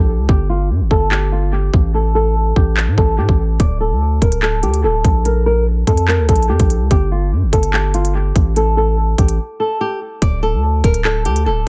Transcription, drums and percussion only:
0.29 kick
0.91 kick
1.12 clap
1.74 kick
2.56 kick
2.77 clap
2.98 kick
3.29 kick
3.60 kick, closed hi-hat
4.22 kick, closed hi-hat
4.32 closed hi-hat
4.43 clap
4.63 closed hi-hat
4.74 closed hi-hat
5.04 kick, closed hi-hat
5.25 closed hi-hat
5.87 kick, closed hi-hat
5.97 closed hi-hat
6.08 clap
6.29 kick, closed hi-hat
6.36 closed hi-hat
6.43 closed hi-hat
6.59 kick, closed hi-hat
6.70 closed hi-hat
6.91 kick, closed hi-hat
7.53 kick, closed hi-hat
7.63 closed hi-hat
7.74 clap
7.94 closed hi-hat
8.05 closed hi-hat
8.36 kick, closed hi-hat
8.56 closed hi-hat
9.18 kick, closed hi-hat
9.28 closed hi-hat
10.22 kick, closed hi-hat
10.84 kick, closed hi-hat
10.94 closed hi-hat
11.05 clap
11.25 closed hi-hat
11.36 closed hi-hat

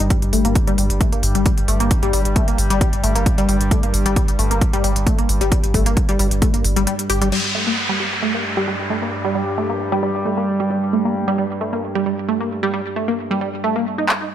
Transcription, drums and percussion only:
0.10 kick, closed hi-hat
0.22 closed hi-hat
0.33 open hi-hat
0.45 closed hi-hat
0.55 kick, closed hi-hat
0.67 closed hi-hat
0.78 open hi-hat
0.90 closed hi-hat
1.01 kick, closed hi-hat
1.13 closed hi-hat
1.23 open hi-hat
1.35 closed hi-hat
1.46 kick, closed hi-hat
1.58 closed hi-hat
1.68 open hi-hat
1.80 closed hi-hat
1.91 kick, closed hi-hat
2.03 closed hi-hat
2.13 open hi-hat
2.25 closed hi-hat
2.36 kick, closed hi-hat
2.48 closed hi-hat
2.58 open hi-hat
2.70 closed hi-hat
2.81 kick, closed hi-hat
2.93 closed hi-hat
3.04 open hi-hat
3.16 closed hi-hat
3.26 kick, closed hi-hat
3.38 closed hi-hat
3.49 open hi-hat
3.61 closed hi-hat
3.71 kick, closed hi-hat
3.83 closed hi-hat
3.94 open hi-hat
4.06 closed hi-hat
4.16 kick, closed hi-hat
4.28 closed hi-hat
4.39 open hi-hat
4.51 closed hi-hat
4.61 kick, closed hi-hat
4.73 closed hi-hat
4.84 open hi-hat
4.96 closed hi-hat
5.07 kick, closed hi-hat
5.19 closed hi-hat
5.29 open hi-hat
5.41 closed hi-hat
5.52 kick, closed hi-hat
5.64 closed hi-hat
5.74 kick, open hi-hat
5.86 closed hi-hat
5.97 kick, closed hi-hat
6.09 closed hi-hat
6.19 open hi-hat
6.31 closed hi-hat
6.42 kick, closed hi-hat
6.54 closed hi-hat
6.64 open hi-hat
6.76 closed hi-hat
6.87 closed hi-hat
6.99 closed hi-hat
7.10 open hi-hat
7.22 closed hi-hat
7.32 crash
14.09 clap

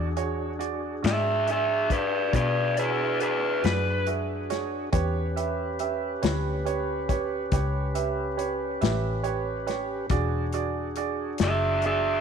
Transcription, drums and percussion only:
0.17 closed hi-hat
0.61 closed hi-hat
1.04 snare, closed hi-hat
1.47 closed hi-hat
1.90 kick, closed hi-hat
2.33 kick, closed hi-hat
2.77 closed hi-hat
3.20 closed hi-hat
3.64 snare, closed hi-hat
4.07 closed hi-hat
4.50 snare, closed hi-hat
4.93 kick, closed hi-hat
5.37 closed hi-hat
5.79 closed hi-hat
6.23 snare, closed hi-hat
6.67 closed hi-hat
7.09 kick, closed hi-hat
7.52 kick, closed hi-hat
7.95 closed hi-hat
8.39 closed hi-hat
8.82 snare, closed hi-hat
9.24 closed hi-hat
9.68 snare, closed hi-hat
10.10 kick, closed hi-hat
10.53 closed hi-hat
10.96 closed hi-hat
11.38 snare, closed hi-hat
11.82 closed hi-hat

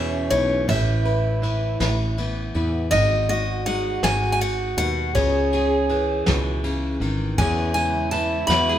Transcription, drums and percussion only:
0.31 ride
0.68 kick, ride
1.05 ride
1.43 ride
1.80 snare, ride
2.18 ride
2.54 ride
2.92 kick, ride
3.29 ride
3.66 ride
4.03 snare, ride
4.41 ride
4.78 ride
5.15 kick, ride
5.52 ride
5.89 ride
6.26 kick, snare, ride
6.64 ride
7.01 ride
7.38 kick, ride
7.76 ride
8.13 ride
8.50 snare, ride

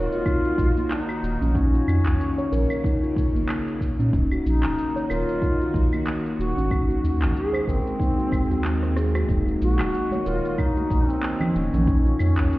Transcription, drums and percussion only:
0.12 shaker
0.26 kick, claves, shaker
0.45 shaker
0.58 kick, shaker
0.77 shaker
0.91 clap, shaker
1.09 claves, shaker
1.24 shaker
1.42 shaker
1.55 kick, shaker
1.75 shaker
1.88 claves, shaker
2.06 clap, shaker
2.21 shaker
2.39 shaker
2.53 shaker
2.70 claves, shaker
2.84 kick, shaker
3.04 shaker
3.16 kick, shaker
3.36 shaker
3.49 clap, claves, shaker
3.68 shaker
3.81 kick, shaker
4.00 shaker
4.13 kick, shaker
4.31 claves, shaker
4.46 shaker
4.63 clap, shaker
4.79 shaker
4.97 shaker
5.10 claves, shaker
5.29 shaker
5.42 kick, shaker
5.61 shaker
5.74 kick, shaker
5.93 claves, shaker
6.07 clap, shaker
6.26 shaker
6.40 shaker
6.58 shaker
6.71 kick, claves, shaker
6.90 shaker
7.05 shaker
7.22 clap, shaker
7.37 shaker
7.54 claves, shaker
7.67 kick, shaker
7.87 shaker
8.00 kick, shaker
8.19 shaker
8.32 kick, claves, shaker
8.51 shaker
8.65 clap, shaker
8.83 cross-stick, shaker
8.97 cross-stick, shaker
9.15 cross-stick, claves, shaker
9.29 kick, shaker
9.48 shaker
9.62 shaker
9.79 clap, claves, shaker
9.94 shaker
10.11 high conga, shaker
10.26 shaker
10.45 shaker
10.58 kick, claves, shaker
10.76 high conga, shaker
10.90 kick, shaker
11.10 shaker
11.23 clap, shaker
11.41 low conga, claves, shaker
11.56 shaker
11.74 low conga, shaker
11.87 kick, shaker
12.06 shaker
12.19 claves, shaker
12.38 clap, shaker
12.53 shaker

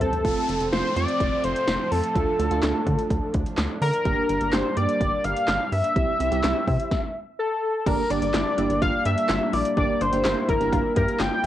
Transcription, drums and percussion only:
0.01 closed hi-hat, floor tom
0.13 closed hi-hat, floor tom
0.25 kick, closed hi-hat
0.49 closed hi-hat
0.60 closed hi-hat
0.72 snare, closed hi-hat
0.96 closed hi-hat
1.08 closed hi-hat
1.20 kick, closed hi-hat
1.44 closed hi-hat
1.56 closed hi-hat
1.67 snare, closed hi-hat
1.92 open hi-hat
2.03 closed hi-hat
2.15 kick, closed hi-hat
2.39 closed hi-hat
2.51 closed hi-hat
2.63 snare, clap, closed hi-hat
2.87 kick, closed hi-hat
2.99 closed hi-hat
3.11 kick, closed hi-hat
3.34 kick, closed hi-hat
3.46 closed hi-hat
3.58 snare, clap, closed hi-hat
3.82 open hi-hat
3.94 closed hi-hat
4.06 kick, closed hi-hat
4.30 closed hi-hat
4.41 closed hi-hat
4.53 snare, clap, closed hi-hat
4.77 closed hi-hat
4.89 closed hi-hat
5.01 kick, closed hi-hat
5.25 closed hi-hat
5.37 closed hi-hat
5.48 snare, clap, closed hi-hat
5.72 open hi-hat
5.84 closed hi-hat
5.96 kick, closed hi-hat
6.20 closed hi-hat
6.32 closed hi-hat
6.44 snare, clap, closed hi-hat
6.68 kick, open hi-hat
6.80 closed hi-hat
6.91 kick, snare
7.87 kick, closed hi-hat, crash
8.10 closed hi-hat
8.22 closed hi-hat
8.34 snare, clap, closed hi-hat
8.58 closed hi-hat
8.70 closed hi-hat
8.82 kick, closed hi-hat
9.05 closed hi-hat
9.18 closed hi-hat
9.29 snare, clap, closed hi-hat
9.53 open hi-hat
9.65 closed hi-hat
9.77 kick, closed hi-hat
10.01 closed hi-hat
10.13 closed hi-hat
10.25 snare, clap, closed hi-hat
10.48 kick, closed hi-hat
10.60 closed hi-hat
10.72 kick, closed hi-hat
10.96 kick, closed hi-hat
11.08 closed hi-hat
11.20 snare, clap, closed hi-hat

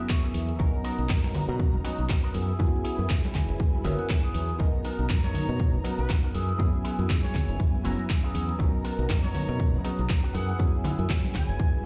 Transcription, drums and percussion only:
0.09 kick, clap, closed hi-hat, shaker
0.24 shaker
0.34 open hi-hat, shaker
0.48 closed hi-hat, shaker
0.59 kick, closed hi-hat, shaker
0.74 shaker
0.84 open hi-hat, shaker
0.99 closed hi-hat, shaker
1.09 kick, clap, closed hi-hat
1.24 open hi-hat, high conga, shaker
1.34 open hi-hat, low conga, shaker
1.48 closed hi-hat, shaker
1.60 kick, closed hi-hat, shaker
1.74 high conga, shaker
1.85 open hi-hat, shaker
1.99 closed hi-hat, shaker
2.09 kick, clap, closed hi-hat
2.24 shaker
2.34 open hi-hat, shaker
2.49 closed hi-hat, shaker
2.60 kick, closed hi-hat, shaker
2.74 shaker
2.84 open hi-hat, shaker
2.99 closed hi-hat, shaker
3.10 kick, clap, closed hi-hat, shaker
3.24 open hi-hat, high conga, shaker
3.34 kick, clap, open hi-hat, low conga, shaker
3.49 closed hi-hat, shaker
3.59 kick, closed hi-hat, shaker
3.74 high conga, shaker
3.85 open hi-hat, low conga, shaker
3.99 closed hi-hat, shaker
4.09 kick, clap, closed hi-hat, shaker
4.24 shaker
4.34 open hi-hat, shaker
4.49 closed hi-hat, shaker
4.60 kick, closed hi-hat, shaker
4.74 shaker
4.85 open hi-hat, shaker
4.99 closed hi-hat, shaker
5.10 kick, clap, closed hi-hat
5.24 open hi-hat, high conga, shaker
5.35 open hi-hat, low conga, shaker
5.49 closed hi-hat, shaker
5.60 kick, closed hi-hat, shaker
5.74 high conga, shaker
5.85 open hi-hat, shaker
5.99 closed hi-hat, shaker
6.10 kick, clap, closed hi-hat, shaker
6.25 shaker
6.35 open hi-hat, shaker
6.49 closed hi-hat, shaker
6.60 kick, closed hi-hat, shaker
6.74 shaker
6.85 open hi-hat, shaker
6.98 closed hi-hat, shaker
7.10 kick, clap, closed hi-hat
7.23 open hi-hat, high conga, shaker
7.35 kick, clap, open hi-hat, low conga, shaker
7.48 closed hi-hat, shaker
7.60 kick, closed hi-hat, shaker
7.74 high conga, shaker
7.84 open hi-hat, shaker
7.99 closed hi-hat, shaker
8.10 kick, clap, closed hi-hat
8.24 shaker
8.35 open hi-hat, shaker
8.49 closed hi-hat, shaker
8.60 kick, closed hi-hat, shaker
8.73 shaker
8.84 open hi-hat, shaker
8.99 closed hi-hat, shaker
9.10 kick, clap, closed hi-hat
9.23 open hi-hat, high conga, shaker
9.35 open hi-hat, low conga, shaker
9.49 closed hi-hat, shaker
9.60 kick, closed hi-hat, shaker
9.74 high conga, shaker
9.85 open hi-hat, shaker
9.98 closed hi-hat, shaker
10.09 kick, clap, closed hi-hat
10.24 shaker
10.35 open hi-hat, shaker
10.49 closed hi-hat, shaker
10.59 kick, closed hi-hat, shaker
10.74 shaker
10.84 open hi-hat, low conga, shaker
10.99 closed hi-hat, shaker
11.10 kick, clap, closed hi-hat
11.24 open hi-hat, high conga, shaker
11.34 kick, clap, open hi-hat, low conga, shaker
11.49 closed hi-hat, shaker
11.60 kick, closed hi-hat, shaker
11.74 high conga, shaker

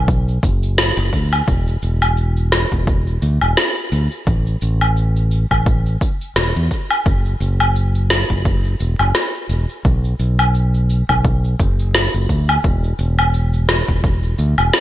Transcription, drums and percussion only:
0.08 kick, cabasa
0.28 cabasa
0.43 kick, cabasa
0.63 cabasa
0.78 snare, cabasa
0.98 cabasa
1.13 kick, cabasa
1.33 cabasa, low woodblock
1.48 kick, cabasa
1.67 cabasa
1.82 cabasa
2.02 cabasa, low woodblock
2.17 cabasa
2.37 cabasa
2.52 snare, cabasa
2.72 kick, cabasa
2.87 kick, cabasa
3.07 cabasa
3.22 cabasa
3.41 cabasa, low woodblock
3.57 snare, cabasa
3.77 cabasa
3.92 cabasa
4.11 cabasa
4.27 kick, cabasa
4.47 cabasa
4.62 cabasa
4.81 cabasa, low woodblock
4.97 cabasa
5.16 cabasa
5.31 cabasa
5.51 kick, cabasa, low woodblock
5.66 kick, cabasa
5.86 cabasa
6.01 kick, cabasa
6.21 cabasa
6.36 snare, cabasa
6.56 cabasa
6.71 kick, cabasa
6.91 cabasa, low woodblock
7.06 kick, cabasa
7.25 cabasa
7.41 cabasa
7.60 cabasa, low woodblock
7.76 cabasa
7.95 cabasa
8.10 snare, cabasa
8.30 kick, cabasa
8.45 kick, cabasa
8.64 cabasa
8.80 cabasa
8.99 cabasa, low woodblock
9.15 snare, cabasa
9.34 cabasa
9.50 cabasa
9.69 cabasa
9.85 kick, cabasa
10.04 cabasa
10.20 cabasa
10.39 cabasa, low woodblock
10.55 cabasa
10.74 cabasa
10.90 cabasa
11.09 kick, cabasa, low woodblock
11.24 kick, cabasa
11.44 cabasa
11.60 kick, cabasa
11.79 cabasa
11.95 snare, cabasa
12.14 cabasa
12.29 kick, cabasa
12.49 cabasa, low woodblock
12.64 kick, cabasa
12.84 cabasa
12.99 cabasa
13.19 cabasa, low woodblock
13.34 cabasa
13.53 cabasa
13.69 snare, cabasa
13.88 kick, cabasa
14.04 kick, cabasa
14.23 cabasa
14.39 cabasa
14.58 cabasa, low woodblock
14.73 snare, cabasa

